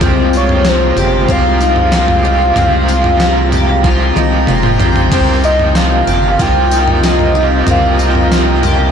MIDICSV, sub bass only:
0, 0, Header, 1, 2, 480
1, 0, Start_track
1, 0, Key_signature, -4, "minor"
1, 0, Tempo, 638298
1, 10, Time_signature, 4, 2, 24, 8
1, 6704, End_track
2, 0, Start_track
2, 0, Title_t, "Sub bass"
2, 0, Program_c, 0, 38
2, 7, Note_on_c, 0, 36, 108
2, 698, Note_off_c, 0, 36, 0
2, 726, Note_on_c, 0, 31, 94
2, 956, Note_off_c, 0, 31, 0
2, 969, Note_on_c, 0, 36, 107
2, 1899, Note_off_c, 0, 36, 0
2, 1932, Note_on_c, 0, 36, 102
2, 3101, Note_off_c, 0, 36, 0
2, 3130, Note_on_c, 0, 36, 105
2, 3358, Note_off_c, 0, 36, 0
2, 3373, Note_on_c, 0, 29, 91
2, 3599, Note_off_c, 0, 29, 0
2, 3608, Note_on_c, 0, 34, 92
2, 3837, Note_off_c, 0, 34, 0
2, 3848, Note_on_c, 0, 36, 111
2, 4539, Note_off_c, 0, 36, 0
2, 4565, Note_on_c, 0, 31, 96
2, 4795, Note_off_c, 0, 31, 0
2, 4809, Note_on_c, 0, 36, 98
2, 5740, Note_off_c, 0, 36, 0
2, 5767, Note_on_c, 0, 36, 110
2, 6704, Note_off_c, 0, 36, 0
2, 6704, End_track
0, 0, End_of_file